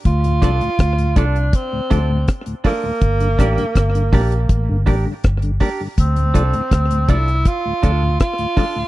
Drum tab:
HH |xxxxxxxxx-x-xxo-|xxxxxxoxx-o-xxo-|xxxxxxxxx-x-xxo-|
SD |--r-r-------r---|--r-r-------r---|----r-------r---|
BD |o-o-o-o-o-o-o-o-|o-o-o-o-o-o-o-o-|o-o-o-o-o-o-o-o-|